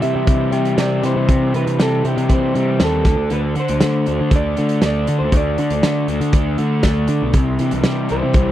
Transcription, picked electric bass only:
0.03 C3
0.15 C3
0.27 C3
0.52 C3
0.77 C3
1.03 C3
1.16 C3
1.29 C3
1.54 C3
1.67 C3
1.80 C3
2.05 C3
2.17 C3
2.30 C3
2.55 C3
2.81 D#2
3.05 D2
3.18 D2
3.32 D2
3.56 D3
3.69 D2
3.83 D3
4.08 D2
4.21 D3
4.31 D2
4.58 D3
4.83 D2
5.08 D3
5.21 D2
5.33 D2
5.58 D3
5.71 D2
5.83 D3
6.08 D2
6.20 D3
6.33 D2
6.58 D3
6.83 D2
7.08 D3
7.22 B1
7.34 C2
7.60 C3
7.72 C2
7.85 C3
8.11 C2
8.23 C3
8.34 C2

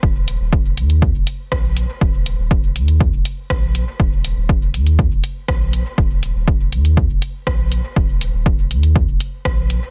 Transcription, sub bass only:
0.03 D#1
0.40 D#1
0.77 D#2
1.15 D#1
1.52 A#1
2.01 D#1
2.39 D#1
2.76 D#2
3.13 D#1
3.50 A#1
4.00 D#1
4.37 D#1
4.74 D#2
5.11 D#1
5.48 A#1
5.98 D#1
6.35 D#1
6.72 D#2
7.10 D#1
7.47 A#1
7.96 D#1
8.34 D#1
8.71 D#2
9.08 D#1
9.45 A#1

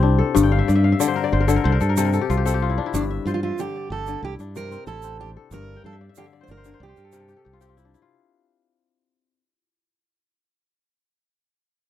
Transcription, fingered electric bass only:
Already playing: C2
0.36 G1
0.69 G2
1.33 G1
1.65 C2
1.81 G2
2.30 C2
2.94 G1
3.25 G2
3.90 G1
4.23 C2
4.39 G2
4.87 A1
5.51 G1
5.84 G2
6.48 G1
6.80 C2
6.97 G2
7.46 C2

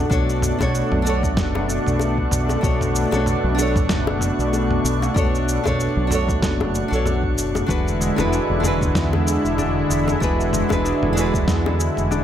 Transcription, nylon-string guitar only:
0.10 D4 F#4 A4 C#5
0.59 D4 F#4 A4 C#5
1.02 D4 F#4
1.07 A4 C#5
2.61 D4 F#4 A4 C#5
3.11 D4 F#4 A4 C#5
3.55 D4 F#4
3.60 A4 C#5
5.14 D4 F#4 A4 C#5
5.64 D4 F#4 A4 C#5
6.07 D4 F#4
6.12 A4 C#5
6.88 D4 F#4
6.93 A4 C#5
7.66 D4 F#4 G#4 B4
8.16 D4 F#4 G#4 B4
8.60 D4 F#4
8.65 G#4 B4
10.20 D4 F#4 G#4 B4
10.69 D4 F#4 G#4 B4
11.13 D4 F#4
11.18 G#4 B4

